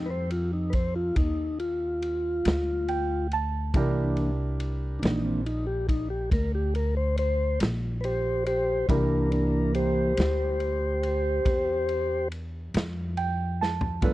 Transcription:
Already playing: upright bass F2, grand piano C4 D#4 G4 A4
0.06 tonewheel organ B4
0.10 tonewheel organ C5
0.30 tonewheel organ F4, ride
0.53 tonewheel organ D#4
0.70 tonewheel organ B4, kick, ride
0.75 tonewheel organ C5
0.96 tonewheel organ F4
1.16 upright bass D#2, tonewheel organ D#4, kick, ride
1.60 tonewheel organ F4, ride
2.02 ride
2.45 upright bass D2, snare, ride
2.88 grand piano G5, ride
3.31 grand piano A5, ride
3.74 upright bass C2, tonewheel organ E3 A#3 D4, grand piano D4 E4 G4 A#4, kick, ride
4.17 ride
4.60 ride
4.99 tonewheel organ E3 A#3 D4, ride
5.03 upright bass A#1, tonewheel organ D#4, snare
5.25 tonewheel organ C4
5.46 tonewheel organ D#4, ride
5.67 tonewheel organ G4
5.89 tonewheel organ D#4, kick, ride
6.10 tonewheel organ G4
6.31 upright bass D2, tonewheel organ A#4, kick, ride
6.55 tonewheel organ G4
6.75 tonewheel organ A#4, ride
6.97 tonewheel organ C5
7.17 tonewheel organ C5, ride
7.60 upright bass A#1, snare, ride
8.01 tonewheel organ B4 C5, ride
8.05 tonewheel organ G4
8.46 tonewheel organ G4 C5, ride
8.88 upright bass C2, tonewheel organ E3 A#3 D4 A#4, grand piano D4 E4 G4 A#4, kick, ride
9.32 tonewheel organ D4 A#4, ride
9.74 tonewheel organ G4 C5, ride
10.17 upright bass D2, snare, ride
10.60 ride
11.03 ride
11.45 upright bass E2, kick, ride
11.89 ride
12.32 ride
12.74 upright bass F2, snare, ride
13.17 grand piano G5, ride
13.61 grand piano A5, snare
13.81 floor tom
14.01 upright bass G2, tonewheel organ F3 A3 B3, grand piano D4 F4 A4 B4, kick, ride

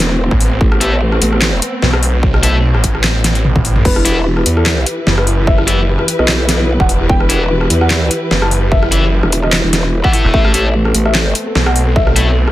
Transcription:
Already playing: wobble bass E1, string section A3 B3 C4
0.00 snare, closed hi-hat
0.31 detuned saw bass A1, kick
0.41 open hi-hat
0.61 wobble bass A1, kick
0.72 cross-stick
0.81 distorted electric guitar A3 E4 A4, closed hi-hat
1.12 cross-stick
1.22 wobble bass A1, closed hi-hat
1.33 cross-stick
1.42 snare, clap
1.62 closed hi-hat
1.82 detuned saw bass B1, snare
1.93 cross-stick
2.03 open hi-hat
2.23 kick
2.34 cross-stick
2.43 detuned saw bass B1, distorted electric guitar A3 E4 A4, closed hi-hat
2.74 detuned saw bass A1, cross-stick
2.84 kick, closed hi-hat
2.95 cross-stick
3.04 snare, clap
3.24 snare, closed hi-hat, high tom
3.35 closed hi-hat
3.45 mid tom
3.56 detuned saw bass A1, kick, mid tom
3.65 open hi-hat
3.76 mid tom
3.85 wobble bass E1, string section E3 E4 G4 B4, grand piano B4, kick, crash
3.96 grand piano E4, cross-stick
4.05 distorted electric guitar E3 B3 E4, grand piano E4, closed hi-hat
4.16 grand piano E4
4.37 grand piano E4, cross-stick
4.46 wobble bass E2, grand piano E4, closed hi-hat
4.57 grand piano A4, cross-stick
4.66 grand piano E4, snare, clap
4.77 grand piano E4
4.86 closed hi-hat
4.98 grand piano E4
5.07 detuned saw bass F#1, grand piano E4, snare
5.18 grand piano B4, cross-stick
5.27 grand piano E4, open hi-hat
5.38 grand piano E4
5.47 grand piano E5, kick
5.58 grand piano E4, cross-stick
5.67 detuned saw bass F#1, distorted electric guitar E3 B3 E4, grand piano E4, closed hi-hat
5.78 grand piano E4
5.99 grand piano E4, cross-stick
6.08 grand piano E4, closed hi-hat
6.19 wobble bass B1, grand piano D#5, cross-stick
6.28 grand piano E4, snare, clap
6.39 grand piano E4
6.49 snare, closed hi-hat
6.60 grand piano E4
6.69 grand piano E4
6.80 detuned saw bass E1, grand piano F#5, kick
6.89 grand piano E4, open hi-hat
7.00 grand piano E4
7.09 wobble bass E1, grand piano G5, kick
7.20 grand piano B4, cross-stick
7.29 distorted electric guitar E3 B3 E4, grand piano B4, closed hi-hat
7.41 grand piano B4
7.61 grand piano B4, cross-stick
7.70 wobble bass E2, grand piano B4, closed hi-hat
7.81 grand piano F#5, cross-stick
7.91 grand piano B4, snare, clap
8.02 grand piano B4
8.11 closed hi-hat
8.22 grand piano B4
8.31 detuned saw bass F#1, grand piano B4, snare
8.42 grand piano A5, cross-stick
8.51 grand piano B4, open hi-hat
8.62 grand piano B4
8.71 grand piano E5, kick
8.83 grand piano E4, cross-stick
8.92 detuned saw bass F#1, distorted electric guitar E3 B3 E4, grand piano E4, closed hi-hat
9.03 grand piano E4
9.23 wobble bass E1, grand piano E4, cross-stick
9.32 grand piano E4, closed hi-hat
9.43 grand piano D#5, cross-stick
9.53 grand piano E4, snare, clap
9.64 wobble bass E1, grand piano E4
9.73 snare, closed hi-hat
9.84 grand piano E4
9.93 grand piano E4
10.04 distorted electric guitar E3 B3 E4, grand piano F#5, kick
10.13 distorted electric guitar A3 E4 A4, grand piano E4, open hi-hat
10.24 detuned saw bass E1, grand piano E4
10.34 wobble bass A1, string section A3 B3 C4, grand piano E5, kick
10.45 grand piano A4, cross-stick
10.54 distorted electric guitar A3 E4 A4, grand piano A4, closed hi-hat
10.65 grand piano A4
10.85 grand piano A4, cross-stick
10.94 wobble bass A1, grand piano A4, closed hi-hat
11.06 grand piano E5, cross-stick
11.15 grand piano A4, snare, clap
11.26 grand piano A4
11.35 closed hi-hat
11.46 grand piano A4
11.55 detuned saw bass B1, grand piano A4, snare
11.66 grand piano F#5, cross-stick
11.76 grand piano A4, open hi-hat
11.87 grand piano A4
11.96 grand piano E5, kick
12.07 grand piano A4, cross-stick
12.16 detuned saw bass B1, distorted electric guitar A3 E4 A4, grand piano A4, closed hi-hat
12.27 grand piano A4
12.47 grand piano A4, cross-stick

